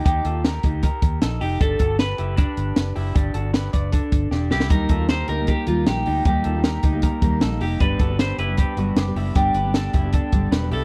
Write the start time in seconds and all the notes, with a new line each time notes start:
0.05 D#2 D#4 G4, kick, closed hi-hat
0.25 D#2 F4 A4, closed hi-hat
0.45 G4 A#4, snare, closed hi-hat
0.63 D2 D#4 G4, kick, closed hi-hat
0.83 G4 A#4, kick, closed hi-hat
1.02 D#2, kick, closed hi-hat
1.22 A#1 D#4 A4, snare, closed hi-hat
1.41 F1 D#4 G4, open hi-hat
1.61 G1 D4 G4 A4, kick, closed hi-hat
1.79 G1 F#4 A4, kick, closed hi-hat
1.99 G4 B4, snare, closed hi-hat
2.18 F#1 E4 G4, closed hi-hat
2.37 D4 G4 B4, kick, closed hi-hat
2.57 G1, closed hi-hat
2.76 F#1, snare, closed hi-hat
2.96 F#1 E4 G4, open hi-hat
3.15 G1 D4 G4, kick, closed hi-hat
3.34 G1 F#4 A4, closed hi-hat
3.54 G4 B4, snare, closed hi-hat
3.73 F#1 B4 D5, kick, closed hi-hat
3.92 D4 A4, kick, closed hi-hat
4.12 G1, kick, closed hi-hat
4.31 E1 D4 G4, snare
4.51 C2 E4 G4, snare
4.60 snare
4.70 D#2 D#3 G3 A#3 D#4 G4 A#4, kick, closed hi-hat
4.89 D#2 F4 A4, kick, closed hi-hat
4.99 G3 A#3 D#4
5.09 G4 A#4 C5, snare, closed hi-hat
5.28 D2 D#4 G4 A#4, closed hi-hat
5.38 G3 A#3 D#4
5.47 G4 A#4, kick, closed hi-hat
5.67 D#2 D#3 G3 A#3 D#4 F4, closed hi-hat
5.87 A#1 G4, snare, closed hi-hat
5.96 G3 A#3 D#4
6.06 D2 D#4 G4, open hi-hat
6.25 D#2 D#3 G3 A#3 D#4 G4, kick, closed hi-hat
6.44 D#2 F4 A4, closed hi-hat
6.54 G3 A#3 D#4
6.64 G4 A#4, snare, closed hi-hat
6.83 D2 D#4 G4, kick, closed hi-hat
6.92 G3 A#3 D#4
7.02 G4 A#4, kick, closed hi-hat
7.21 D#2 D#3 G3 A#3 D#4, kick, closed hi-hat
7.41 A#1 D#4 A4, snare, closed hi-hat
7.50 G3 A#3 D#4
7.61 F1 D#4 G4, open hi-hat
7.79 G1 D3 G3 B3 D4 G4 B4, kick, closed hi-hat
7.99 G1 F#4 A4, kick, closed hi-hat
8.09 G3 B3 D4
8.19 G4 B4 C5, snare, closed hi-hat
8.38 F#1 E4 G4 B4, closed hi-hat
8.48 G3 B3 D4
8.57 G4 B4, kick, closed hi-hat
8.76 G1 D3 G3 B3 D4 F#4, closed hi-hat
8.96 F#1 G4, snare, closed hi-hat
9.06 G3 B3 D4
9.16 F#1 E4 G4, open hi-hat
9.35 G1 D3 G3 B3 D4 G4, kick, closed hi-hat
9.54 G1 G4 B4, closed hi-hat
9.64 G3 B3 D4
9.74 D4 A4, snare, closed hi-hat
9.93 F#1 E4 G4, kick, closed hi-hat
10.03 G3 B3 D4
10.13 D4 A4, kick, closed hi-hat
10.32 G1 D3 G3 B3 D4, kick, closed hi-hat
10.52 E1 G4 B4, snare, closed hi-hat
10.61 G3 B3 D4
10.71 C2 E4 G4 A4, open hi-hat